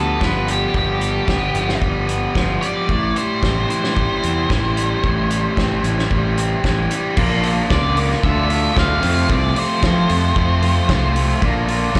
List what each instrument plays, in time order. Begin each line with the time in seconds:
Already playing: fingered electric bass D2, overdriven electric guitar F3 G3 B3, lead electric guitar A4
0.20 fingered electric bass G1, overdriven electric guitar F3, kick, snare
0.24 lead electric guitar B4
0.47 overdriven electric guitar G3, closed hi-hat
0.51 lead electric guitar G4
0.73 fingered electric bass G1, overdriven electric guitar G2, lead electric guitar G4, kick
1.00 overdriven electric guitar G3, closed hi-hat
1.27 fingered electric bass G1, overdriven electric guitar B3, kick, snare
1.54 fingered electric bass G1, overdriven electric guitar F3, closed hi-hat
1.69 snare
1.81 fingered electric bass G1, overdriven electric guitar G3, kick
2.07 overdriven electric guitar B3, closed hi-hat
2.34 fingered electric bass G1, overdriven electric guitar F3, kick, snare
2.61 overdriven electric guitar G3, lead electric guitar D5, closed hi-hat
2.88 fingered electric bass A1, overdriven electric guitar A2, kick
3.15 overdriven electric guitar G3, lead electric guitar C5, closed hi-hat
3.42 fingered electric bass A1, overdriven electric guitar C4, kick, snare
3.68 overdriven electric guitar E3, lead electric guitar C5, closed hi-hat
3.84 snare
3.95 fingered electric bass A1, overdriven electric guitar G3, kick
4.22 fingered electric bass E2, overdriven electric guitar C4, closed hi-hat
4.49 fingered electric bass A1, overdriven electric guitar E3, kick, snare
4.76 overdriven electric guitar G3, closed hi-hat
5.03 fingered electric bass A1, overdriven electric guitar A2, kick
5.30 overdriven electric guitar G3, closed hi-hat
5.56 fingered electric bass A1, overdriven electric guitar C4, kick, snare
5.83 fingered electric bass A1, overdriven electric guitar E3, closed hi-hat
5.99 snare
6.10 fingered electric bass A1, overdriven electric guitar G3, kick
6.37 overdriven electric guitar C4, closed hi-hat
6.64 fingered electric bass A1, overdriven electric guitar E3, kick, snare
6.91 overdriven electric guitar G3, closed hi-hat
7.16 fingered electric bass A#1, overdriven electric guitar A#2 D3 A#3 D4 F4, tonewheel organ F4 A#4 D5 A#5, kick, crash
7.43 overdriven electric guitar A#3 D4 F4, open hi-hat
7.69 fingered electric bass C#2, overdriven electric guitar D3 A#3 D4 F4, lead electric guitar D5, kick, snare
7.96 overdriven electric guitar A#2 D3 A#3 D4 F4, lead electric guitar D5, open hi-hat
8.12 snare
8.22 fingered electric bass D2, overdriven electric guitar D3 A3 D4 F4, tonewheel organ A4 A5, lead electric guitar E5, kick
8.49 clean electric guitar D3, overdriven electric guitar A3 D4 F4, open hi-hat
8.75 fingered electric bass D2, overdriven electric guitar D3 A3 D4 F4, lead electric guitar F5, kick, snare
9.02 fingered electric bass F2, overdriven electric guitar F2 C3 F3 A3 C4 F4, tonewheel organ C5 A5, open hi-hat
9.28 fingered electric bass C2, overdriven electric guitar F2 C3 F3 A3 C4 F4, lead electric guitar D5, kick
9.54 overdriven electric guitar F3 A3 C4 F4, open hi-hat
9.59 lead electric guitar C5
9.81 overdriven electric guitar F3 A3 C4 F4, fingered electric bass F3, kick, snare
10.08 fingered electric bass F2, overdriven electric guitar F2 C3 F3 A3 C4 F4, open hi-hat
10.35 fingered electric bass F2, overdriven electric guitar F3 A3 C4 F4, kick
10.61 clean electric guitar F2 C3, overdriven electric guitar F3 A3 C4 F4, open hi-hat
10.88 fingered electric bass C2, overdriven electric guitar F2 C3 F3 A3 C4 F4, kick, snare
11.14 overdriven electric guitar F3 A3 C4 F4, open hi-hat
11.40 fingered electric bass A#1, overdriven electric guitar A#2 D3 A#3 D4 F4, tonewheel organ F4 A#4 D5 A#5, kick
11.67 overdriven electric guitar A#3 D4 F4, open hi-hat
11.94 fingered electric bass A#1, overdriven electric guitar D3 A#3 D4, kick, snare